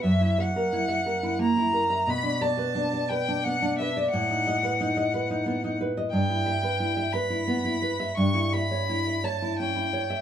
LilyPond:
<<
  \new Staff \with { instrumentName = "Violin" } { \time 3/4 \key b \minor \tempo 4 = 88 e''8 fis''4. ais''4 | b''8 a''4 g''8 fis''8 e''8 | fis''2~ fis''8 r8 | g''4. b''4. |
cis'''8 b''4 a''8 g''4 | }
  \new Staff \with { instrumentName = "Nylon-string guitar" } { \time 3/4 \key b \minor fis,16 e'16 e''16 ais'16 e'16 e''16 ais'16 e'16 ais16 e'16 ais'16 e''16 | b,16 d'16 d''16 b'16 d'16 d''16 b'16 d'16 b16 d'16 b'16 d''16 | a,16 dis'16 dis''16 b'16 dis'16 dis''16 b'16 dis'16 b16 dis'16 b'16 dis''16 | g,16 e'16 e''16 b'16 e'16 e''16 b'16 e'16 b16 e'16 b'16 e''16 |
g,16 e'16 e''16 cis''16 e'16 e''16 cis''16 e'16 cis'16 e'16 cis''16 e''16 | }
>>